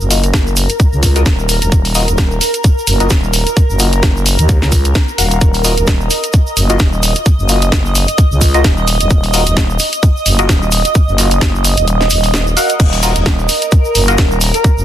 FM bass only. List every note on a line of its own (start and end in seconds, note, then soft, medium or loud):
0.00 0.32 F#1 loud
0.34 0.68 F#1 medium
0.93 1.24 C#2 medium
1.26 1.60 D#1 loud
1.62 1.71 D#1 medium
1.72 2.06 D#1 medium
2.08 2.40 D#1 loud
2.87 3.09 F#1 medium
3.10 3.45 D#1 loud
3.70 4.01 F#1 medium
4.03 4.37 F#1 loud
4.39 4.60 D#2 loud
4.62 4.94 C#2 loud
5.18 5.40 D#1 loud
5.41 5.75 D#1 medium
5.77 6.09 D#1 loud
6.57 6.78 F#1 loud
6.80 7.14 D#1 loud
7.39 7.70 F#1 medium
7.72 8.06 F#1 loud
8.31 8.63 C#2 medium
8.64 8.98 D#1 loud
9.00 9.09 D#1 loud
9.10 9.45 D#1 medium
9.47 9.78 D#1 medium
10.26 10.47 F#1 medium
10.49 10.83 D#1 loud
11.08 11.40 F#1 loud
11.41 11.75 F#1 medium
11.77 12.09 D#1 medium
12.11 12.55 D#1 loud
12.80 13.14 D#1 medium
13.16 13.47 D#1 loud
13.95 14.17 F#1 loud
14.18 14.52 D#1 loud
14.77 14.85 F#1 loud